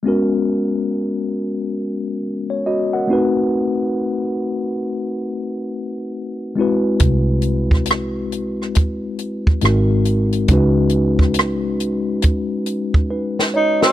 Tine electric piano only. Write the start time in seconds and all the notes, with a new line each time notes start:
0.03 G#3 B3 C#4
0.07 F#4 A#4
2.50 C#5
2.66 F#4 D#5
2.93 A#4 F#5
3.08 A3 C4 D#4 F#4
3.13 B4
6.56 G#3 C4 E4 F#4
6.61 B4
9.62 G#3 C4 D#4 F#4 A#4
10.48 G#3 C#4 D#4 F#4
10.53 B4
13.10 D#4 B4
13.54 C#5
13.81 F#4 D#5